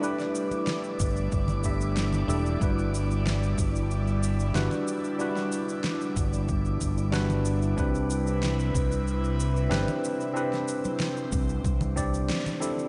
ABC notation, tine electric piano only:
X:1
M:4/4
L:1/16
Q:1/4=93
K:Em
V:1 name="Tine electric piano"
[A,DEGB]8- [A,DEGB]2 [A,DEGe]4 [A,DEGA] z | [G,DEFB]12 [G,DEFB]4 | [G,DEFB]12 [G,DEFB]4 | [CDEGB]12 [CDEGB]4 |
[CDEGB]8- [CDEGB]2 [CDEGd]4 [CDEGA] z |]